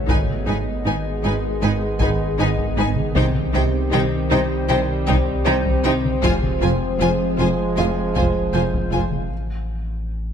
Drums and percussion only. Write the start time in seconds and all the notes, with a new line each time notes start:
0.09 taiko
0.28 taiko mid
2.00 taiko
2.58 taiko
2.96 taiko mid
3.15 taiko
3.35 taiko mid
5.08 taiko
5.66 taiko
6.05 taiko mid
6.24 taiko
6.43 taiko mid
8.16 taiko
8.74 taiko
9.12 taiko mid